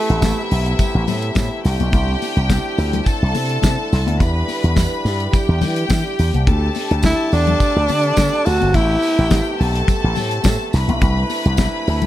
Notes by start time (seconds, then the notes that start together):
Already playing: C3 A3 B3 E4 G4 E5
0.10 A1, closed hi-hat
0.22 kick, snare, closed hi-hat, tambourine, high conga
0.51 B1, open hi-hat
0.66 closed hi-hat
0.79 kick, closed hi-hat, tambourine, low conga
0.95 A1
1.08 A2, open hi-hat, tambourine, muted conga, low conga
1.22 closed hi-hat
1.35 A2, kick, snare, closed hi-hat, tambourine, high conga
1.64 C2 D3 C4 E4 G4 G5, snare, open hi-hat, tambourine
1.80 B1, closed hi-hat, high conga
1.93 C2, kick, closed hi-hat, tambourine, muted conga
2.22 open hi-hat, tambourine, muted conga
2.37 C2, closed hi-hat
2.50 kick, snare, closed hi-hat, tambourine, high conga
2.78 D2, open hi-hat, tambourine
2.93 closed hi-hat, low conga
3.06 A4 A5, kick, closed hi-hat, tambourine
3.22 C2
3.34 C3, open hi-hat, tambourine, muted conga
3.49 closed hi-hat
3.62 C3, kick, snare, closed hi-hat, tambourine, high conga
3.92 C2, snare, open hi-hat, tambourine
4.07 D2, closed hi-hat, high conga
4.20 E2 G3 G4 B4 B5, kick, closed hi-hat, tambourine, muted conga
4.48 open hi-hat, tambourine, muted conga
4.64 E2, closed hi-hat
4.76 kick, snare, closed hi-hat, tambourine, high conga
5.05 G2, open hi-hat, tambourine
5.20 closed hi-hat
5.33 G4 G5, kick, closed hi-hat, tambourine, low conga
5.49 E2
5.61 E3, open hi-hat, tambourine, muted conga, low conga
5.76 closed hi-hat
5.89 E3, kick, snare, closed hi-hat, tambourine, high conga
6.19 E2, open hi-hat, tambourine
6.34 C2, closed hi-hat, high conga
6.47 D2 C3 A3 D4 A4 A5, kick, closed hi-hat, muted conga
6.75 open hi-hat, tambourine, muted conga
6.91 D2, closed hi-hat
7.03 E4, kick, snare, closed hi-hat, tambourine, high conga
7.32 E2 D4, open hi-hat, tambourine
7.47 closed hi-hat, low conga
7.60 kick, closed hi-hat, tambourine
7.76 D2
7.88 D3, open hi-hat, tambourine, muted conga
8.03 closed hi-hat
8.17 D3, kick, snare, closed hi-hat, tambourine, high conga
8.46 D2 F#4, open hi-hat, tambourine
8.61 G1, closed hi-hat, high conga
8.74 A1 B3 E4 G4 G5, kick, closed hi-hat, tambourine, muted conga
9.02 open hi-hat, tambourine
9.18 A1, closed hi-hat
9.31 kick, snare, closed hi-hat, tambourine, high conga
9.60 B1 A4 A5, open hi-hat
9.76 closed hi-hat
9.88 kick, closed hi-hat, tambourine, low conga
10.04 A1
10.15 A2, open hi-hat, tambourine, muted conga, low conga
10.31 closed hi-hat
10.44 A2, kick, snare, closed hi-hat, tambourine, high conga
10.72 C2 C3 D4 E4 B4 B5, snare, open hi-hat, tambourine
10.88 B1, closed hi-hat, high conga
11.02 C2, kick, closed hi-hat, tambourine, muted conga
11.30 open hi-hat, tambourine, muted conga
11.45 C2, closed hi-hat
11.57 kick, snare, closed hi-hat, tambourine, high conga
11.87 D2, open hi-hat
12.02 closed hi-hat, low conga